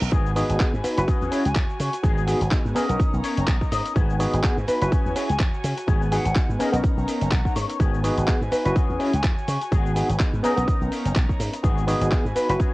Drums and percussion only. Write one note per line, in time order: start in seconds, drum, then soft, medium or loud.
0.02 closed hi-hat medium
0.02 cabasa soft
0.12 kick loud
0.12 closed hi-hat medium
0.12 cabasa soft
0.25 cabasa soft
0.25 shaker soft
0.36 open hi-hat medium
0.36 cabasa medium
0.36 shaker medium
0.49 closed hi-hat medium
0.49 cabasa soft
0.60 kick loud
0.60 clap loud
0.60 closed hi-hat medium
0.60 cabasa soft
0.74 cabasa soft
0.74 shaker soft
0.84 open hi-hat loud
0.84 cabasa medium
0.84 shaker medium
0.97 closed hi-hat medium
0.97 cabasa soft
1.08 kick loud
1.08 closed hi-hat medium
1.08 cabasa soft
1.21 cabasa soft
1.21 shaker soft
1.32 open hi-hat loud
1.32 cabasa medium
1.32 shaker medium
1.45 closed hi-hat medium
1.45 cabasa soft
1.45 shaker soft
1.55 kick loud
1.55 clap loud
1.55 closed hi-hat medium
1.55 cabasa soft
1.70 cabasa soft
1.70 shaker soft
1.80 open hi-hat loud
1.80 cabasa medium
1.80 shaker medium
1.93 closed hi-hat medium
1.93 cabasa soft
2.04 kick loud
2.04 closed hi-hat medium
2.04 cabasa soft
2.04 shaker medium
2.18 cabasa soft
2.18 shaker soft
2.28 open hi-hat loud
2.28 cabasa medium
2.28 shaker loud
2.41 closed hi-hat medium
2.41 cabasa soft
2.41 shaker soft
2.51 kick loud
2.51 clap loud
2.51 closed hi-hat soft
2.51 cabasa soft
2.65 cabasa soft
2.65 shaker soft
2.76 open hi-hat loud
2.76 cabasa medium
2.76 shaker medium
2.89 closed hi-hat medium
2.89 cabasa soft
2.89 shaker soft
3.00 kick loud
3.00 closed hi-hat medium
3.00 cabasa soft
3.00 shaker medium
3.14 cabasa soft
3.14 shaker soft
3.24 open hi-hat loud
3.24 cabasa medium
3.24 shaker loud
3.38 closed hi-hat medium
3.38 cabasa soft
3.38 shaker soft
3.48 kick loud
3.48 clap loud
3.48 cabasa soft
3.61 kick medium
3.61 cabasa soft
3.71 open hi-hat loud
3.71 cabasa medium
3.71 shaker medium
3.86 closed hi-hat medium
3.86 cabasa soft
3.86 shaker soft
3.96 kick loud
3.96 closed hi-hat soft
3.96 cabasa soft
3.96 shaker medium
4.09 cabasa soft
4.09 shaker soft
4.20 open hi-hat loud
4.20 cabasa medium
4.20 shaker medium
4.33 closed hi-hat medium
4.33 cabasa soft
4.33 shaker soft
4.43 kick loud
4.43 clap loud
4.43 closed hi-hat soft
4.43 cabasa soft
4.57 cabasa soft
4.57 shaker soft
4.67 open hi-hat loud
4.67 cabasa medium
4.67 shaker medium
4.81 closed hi-hat medium
4.81 cabasa soft
4.81 shaker soft
4.92 kick loud
4.92 closed hi-hat medium
4.92 cabasa soft
4.92 shaker soft
5.05 cabasa soft
5.05 shaker soft
5.16 open hi-hat loud
5.16 cabasa medium
5.16 shaker loud
5.29 closed hi-hat medium
5.29 cabasa soft
5.29 shaker soft
5.39 kick loud
5.39 clap loud
5.39 closed hi-hat soft
5.39 cabasa soft
5.53 cabasa soft
5.53 shaker soft
5.64 open hi-hat loud
5.64 cabasa medium
5.64 shaker medium
5.77 closed hi-hat medium
5.77 cabasa soft
5.77 shaker soft
5.87 kick loud
5.87 closed hi-hat medium
5.87 cabasa soft
5.87 shaker medium
6.02 cabasa soft
6.02 shaker soft
6.11 open hi-hat loud
6.11 cabasa medium
6.11 shaker medium
6.25 closed hi-hat medium
6.25 cabasa soft
6.25 shaker soft
6.36 kick loud
6.36 clap loud
6.36 closed hi-hat soft
6.36 cabasa soft
6.50 cabasa soft
6.50 shaker soft
6.60 open hi-hat loud
6.60 cabasa medium
6.60 shaker medium
6.74 closed hi-hat medium
6.74 cabasa soft
6.74 shaker soft
6.83 kick loud
6.83 closed hi-hat medium
6.83 cabasa soft
6.83 shaker soft
6.98 cabasa soft
6.98 shaker soft
7.08 open hi-hat loud
7.08 cabasa medium
7.08 shaker loud
7.22 closed hi-hat medium
7.22 cabasa soft
7.22 shaker soft
7.32 kick loud
7.32 clap loud
7.32 closed hi-hat soft
7.32 cabasa soft
7.45 kick medium
7.45 cabasa soft
7.45 shaker soft
7.56 open hi-hat loud
7.56 cabasa medium
7.56 shaker medium
7.70 closed hi-hat medium
7.70 cabasa soft
7.70 shaker soft
7.80 kick loud
7.80 closed hi-hat medium
7.80 cabasa soft
7.93 cabasa soft
7.93 shaker soft
8.04 open hi-hat loud
8.04 cabasa medium
8.04 shaker medium
8.17 closed hi-hat medium
8.17 cabasa soft
8.17 shaker soft
8.28 kick loud
8.28 clap loud
8.28 closed hi-hat soft
8.28 cabasa soft
8.41 cabasa soft
8.41 shaker soft
8.52 open hi-hat loud
8.52 cabasa medium
8.52 shaker medium
8.66 closed hi-hat medium
8.66 cabasa soft
8.66 shaker soft
8.76 kick loud
8.76 closed hi-hat medium
8.76 cabasa soft
8.76 shaker medium
8.89 cabasa soft
8.89 shaker soft
9.00 open hi-hat loud
9.00 cabasa medium
9.00 shaker medium
9.13 closed hi-hat medium
9.13 cabasa soft
9.24 kick loud
9.24 clap loud
9.24 closed hi-hat soft
9.24 cabasa soft
9.38 cabasa soft
9.38 shaker soft
9.48 open hi-hat loud
9.48 cabasa medium
9.48 shaker medium
9.61 closed hi-hat medium
9.61 cabasa soft
9.61 shaker soft
9.72 kick loud
9.72 closed hi-hat medium
9.72 cabasa soft
9.86 cabasa soft
9.86 shaker soft
9.96 open hi-hat medium
9.96 cabasa medium
9.96 shaker medium
10.09 closed hi-hat medium
10.09 cabasa soft
10.09 shaker soft
10.20 kick loud
10.20 clap loud
10.20 closed hi-hat medium
10.20 cabasa soft
10.34 cabasa soft
10.44 open hi-hat loud
10.44 cabasa medium
10.44 shaker medium
10.57 closed hi-hat medium
10.57 cabasa soft
10.57 shaker soft
10.68 kick loud
10.68 closed hi-hat medium
10.68 cabasa soft
10.81 cabasa soft
10.81 shaker soft
10.92 open hi-hat loud
10.92 cabasa medium
10.92 shaker medium
11.05 closed hi-hat medium
11.05 cabasa soft
11.05 shaker soft
11.16 kick loud
11.16 clap loud
11.16 closed hi-hat medium
11.16 cabasa soft
11.29 kick medium
11.29 cabasa soft
11.40 open hi-hat loud
11.40 cabasa medium
11.40 shaker medium
11.53 closed hi-hat medium
11.53 cabasa soft
11.53 shaker soft
11.64 kick loud
11.64 closed hi-hat medium
11.64 cabasa soft
11.78 cabasa soft
11.78 shaker soft
11.88 open hi-hat loud
11.88 cabasa medium
11.88 shaker medium
12.01 closed hi-hat medium
12.01 cabasa soft
12.12 kick loud
12.12 clap loud
12.12 closed hi-hat medium
12.12 cabasa soft
12.25 cabasa soft
12.25 shaker soft
12.36 open hi-hat loud
12.36 cabasa medium
12.36 shaker medium
12.49 closed hi-hat medium
12.49 cabasa soft
12.60 kick loud
12.60 closed hi-hat medium
12.60 cabasa medium
12.60 shaker soft